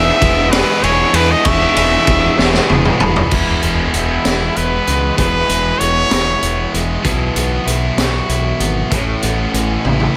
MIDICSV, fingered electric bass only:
0, 0, Header, 1, 2, 480
1, 0, Start_track
1, 0, Key_signature, 4, "major"
1, 0, Tempo, 621118
1, 1122, Time_signature, 6, 3, 24, 8
1, 7857, End_track
2, 0, Start_track
2, 0, Title_t, "Fingered electric bass"
2, 0, Program_c, 0, 33
2, 171, Note_on_c, 0, 28, 84
2, 473, Note_off_c, 0, 28, 0
2, 638, Note_on_c, 0, 28, 90
2, 792, Note_off_c, 0, 28, 0
2, 873, Note_on_c, 0, 40, 86
2, 1029, Note_off_c, 0, 40, 0
2, 1122, Note_on_c, 0, 28, 95
2, 1275, Note_off_c, 0, 28, 0
2, 1361, Note_on_c, 0, 28, 95
2, 1514, Note_off_c, 0, 28, 0
2, 1603, Note_on_c, 0, 28, 91
2, 1755, Note_off_c, 0, 28, 0
2, 1842, Note_on_c, 0, 28, 93
2, 1994, Note_off_c, 0, 28, 0
2, 2086, Note_on_c, 0, 28, 93
2, 2237, Note_off_c, 0, 28, 0
2, 2326, Note_on_c, 0, 28, 81
2, 2477, Note_off_c, 0, 28, 0
2, 2563, Note_on_c, 0, 28, 84
2, 2736, Note_off_c, 0, 28, 0
2, 2805, Note_on_c, 0, 28, 72
2, 2977, Note_off_c, 0, 28, 0
2, 3044, Note_on_c, 0, 28, 68
2, 3216, Note_off_c, 0, 28, 0
2, 3286, Note_on_c, 0, 28, 84
2, 3457, Note_off_c, 0, 28, 0
2, 3528, Note_on_c, 0, 28, 81
2, 3699, Note_off_c, 0, 28, 0
2, 3766, Note_on_c, 0, 37, 79
2, 3938, Note_off_c, 0, 37, 0
2, 4007, Note_on_c, 0, 28, 99
2, 4179, Note_off_c, 0, 28, 0
2, 4242, Note_on_c, 0, 28, 84
2, 4415, Note_off_c, 0, 28, 0
2, 4487, Note_on_c, 0, 28, 76
2, 4659, Note_off_c, 0, 28, 0
2, 4725, Note_on_c, 0, 28, 91
2, 4898, Note_off_c, 0, 28, 0
2, 4963, Note_on_c, 0, 28, 83
2, 5136, Note_off_c, 0, 28, 0
2, 5205, Note_on_c, 0, 28, 81
2, 5377, Note_off_c, 0, 28, 0
2, 5448, Note_on_c, 0, 35, 96
2, 5620, Note_off_c, 0, 35, 0
2, 5683, Note_on_c, 0, 35, 82
2, 5856, Note_off_c, 0, 35, 0
2, 5923, Note_on_c, 0, 35, 79
2, 6097, Note_off_c, 0, 35, 0
2, 6161, Note_on_c, 0, 35, 75
2, 6335, Note_off_c, 0, 35, 0
2, 6407, Note_on_c, 0, 35, 94
2, 6579, Note_off_c, 0, 35, 0
2, 6644, Note_on_c, 0, 32, 86
2, 6817, Note_off_c, 0, 32, 0
2, 6889, Note_on_c, 0, 33, 88
2, 7061, Note_off_c, 0, 33, 0
2, 7130, Note_on_c, 0, 33, 81
2, 7301, Note_off_c, 0, 33, 0
2, 7369, Note_on_c, 0, 33, 80
2, 7541, Note_off_c, 0, 33, 0
2, 7609, Note_on_c, 0, 33, 84
2, 7781, Note_off_c, 0, 33, 0
2, 7857, End_track
0, 0, End_of_file